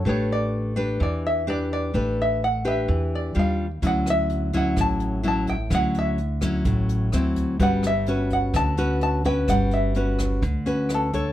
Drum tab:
HH |--------|--------|xxxxxxxx|xxxxxxxx|
SD |--------|--------|-r--r---|r--r--r-|
BD |--------|--------|o--oo--o|o--oo--o|

HH |xxxxxxxx|xxxxxxxx|
SD |-r--r---|r--r--r-|
BD |o--oo--o|o--oo--o|